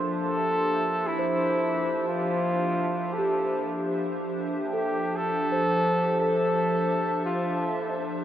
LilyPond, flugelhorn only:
\new Staff \with { instrumentName = "Flugelhorn" } { \time 4/4 \key f \major \tempo 4 = 58 a'4 e'4 f'4 a'8. r16 | r8 g'8 a'4 a'4 f'8. r16 | }